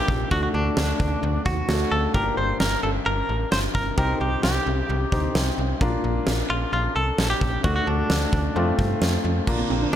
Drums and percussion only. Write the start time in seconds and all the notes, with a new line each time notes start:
0.08 kick
0.31 kick
0.77 snare
1.00 kick
1.46 kick
1.69 snare
2.14 kick
2.60 snare
3.52 snare
3.75 kick
3.98 kick
4.43 snare
5.12 kick
5.35 snare
5.81 kick
6.27 snare
7.18 snare
7.41 kick
7.64 kick
8.10 snare
8.33 kick
8.79 kick
9.02 snare
9.47 kick, crash